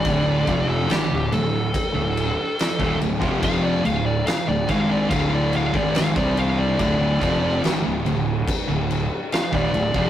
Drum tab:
CC |x-x-x-x-x-x-x-x-|x-x-x-x-x-x-x-x-|x-x-x-x-x-x-x-x-|
SD |----o-------o---|----o-------o---|----o-------o---|
BD |o-o-----o----o-o|o-----o-o--o-o--|o-o-----o----o-o|